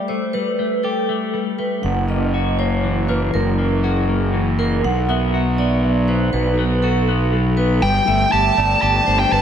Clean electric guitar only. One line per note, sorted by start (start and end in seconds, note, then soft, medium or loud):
0.00 0.33 G3 soft
0.00 0.58 G4 soft
0.09 0.58 A3 soft
0.34 1.32 G3 soft
0.59 1.08 A3 soft
0.84 1.84 G4 soft
1.09 1.58 A3 soft
1.34 1.84 G3 soft
1.59 1.84 A3 soft
1.84 3.09 F#2 soft
2.09 2.58 A#3 soft
2.34 3.83 F#4 soft
2.59 3.08 A#3 soft
2.84 4.09 E3 soft
3.09 3.57 A#3 soft
3.34 4.59 F#2 medium
3.58 4.07 A#3 soft
3.84 5.33 F#4 medium
4.08 4.58 A#3 soft
4.34 4.84 E3 soft
4.59 4.84 A#3 soft
4.84 6.08 B2 medium
5.09 5.58 B3 medium
5.34 6.58 F#4 soft
5.59 6.07 B3 medium
5.84 7.08 F#3 soft
6.09 6.58 B3 soft
6.34 7.58 B2 medium
6.59 7.07 B3 medium
6.83 7.83 F#4 medium
7.08 7.56 B3 medium
7.33 7.82 F#3 soft
7.58 7.83 B3 soft
7.82 9.31 G3 medium
8.07 8.57 A3 medium
8.33 8.82 G4 medium
8.57 9.42 A3 medium
8.82 9.42 G4 medium
9.07 9.42 D4 medium
9.31 9.42 G3 medium